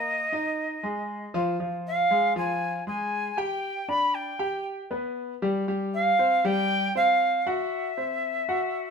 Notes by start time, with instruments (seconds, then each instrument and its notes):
Already playing: grand piano A#3 A#4, flute D#5
0.32 grand piano D#4 D#5
0.83 grand piano G#3 G#4
1.34 grand piano F3 F4
1.60 grand piano F3 F4
1.87 flute F5
2.11 grand piano G#3 G#4
2.36 grand piano F3 F4, flute G#5
2.87 grand piano G#3 G#4, flute G#5
3.37 grand piano G4 G5, flute G5
3.88 grand piano D4 D5, flute B5
4.14 flute G5
4.39 grand piano G4 G5
4.91 grand piano B3 B4
5.42 grand piano G3 G4
5.68 grand piano G3 G4
5.94 flute F5
6.19 grand piano C4 C5
6.44 grand piano G3 G4, flute G5
6.95 grand piano C4 C5, flute F5
7.46 grand piano F#4 F#5, flute E5
7.97 grand piano C4 C5
8.49 grand piano F#4 F#5